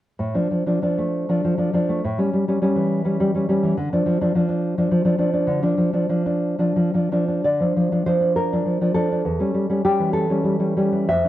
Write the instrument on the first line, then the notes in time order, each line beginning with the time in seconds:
nylon-string guitar
0.19 A2
0.34 F3 D4
0.51 F3
0.67 F3 D4
0.82 F3 D4
0.98 A3
1.29 F3 D4
1.44 F3
1.57 F3 D4
1.73 F3 D4
1.89 A3
2.04 A2
2.18 G3 C#4
2.33 G3
2.48 G3 C#4
2.62 G3 C#4
2.76 E3
3.05 G3 C#4
3.20 G3
3.34 G3 C#4
3.49 G3 C#4
3.63 E3
3.77 D3
3.93 F3 D4
4.06 F3
4.21 F3 D4
4.35 F3 D4
4.49 D4
4.78 F3 D4
4.91 F3
5.05 F3 D4
5.18 F3 D4
5.33 D4
5.47 D3
5.62 F3 D4
5.78 F3
5.93 F3 D4
6.09 F3 D4
6.26 D4
6.59 F3 D4
6.76 F3
6.94 F3 D4
7.12 F3 D4
7.28 D4
7.44 D3 D5
7.60 F3 D4
7.76 F3
7.92 F3 D4
8.06 F3 D4 C5
8.21 D4
8.36 A#4
8.52 F3 D4
8.65 F3
8.81 F3 D4
8.94 F3 D4 A4
9.12 D4
9.25 E2
9.40 G3 C#4
9.54 G3
9.70 G3 C#4
9.85 G3 C#4 G4
10.00 E3
10.13 A4
10.30 G3 C#4
10.44 G3
10.59 G3 C#4
10.77 G3 C#4
10.92 E3
11.09 F2 E5
11.24 F3 D4